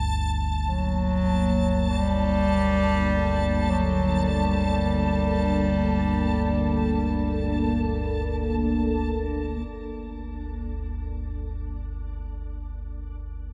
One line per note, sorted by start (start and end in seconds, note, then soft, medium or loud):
0.00 9.68 G1 medium
0.00 9.67 D2 medium
0.00 9.70 A5 medium
0.09 13.53 A#3 medium
0.69 1.85 F#3 loud
1.03 13.53 D4 medium
1.89 3.72 G3 loud
1.98 13.53 A4 medium
2.45 13.53 A#4 medium
3.70 4.32 F#3 loud
4.30 7.89 G3 loud
9.66 13.53 G1 medium
9.66 13.53 D2 medium
9.66 13.53 D4 medium